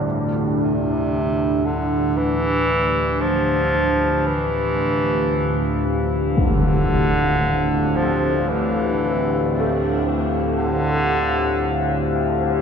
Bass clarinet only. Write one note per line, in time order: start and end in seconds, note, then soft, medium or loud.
0.61 1.67 C3 medium
1.65 2.19 D3 medium
2.17 3.23 E3 loud
3.21 4.29 F3 loud
4.27 6.10 E3 loud
6.38 7.97 D3 loud
7.96 8.50 F3 medium
8.48 10.05 E3 medium
10.58 12.11 D3 loud